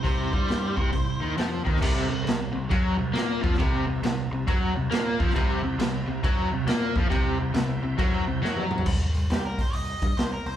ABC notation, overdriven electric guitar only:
X:1
M:4/4
L:1/8
Q:"Swing" 1/4=136
K:C
V:1 name="Overdriven electric guitar" clef=bass
C, G,2 C, C, _E, F, E, | [K:Cmix] C, C, C, C, ^F, C, B, =F, | C, C, C, C, ^F, C, B, =F, | C, C, C, C, ^F, C, B, =F, |
C, C, C, C, ^F, C, F,2 | z8 |]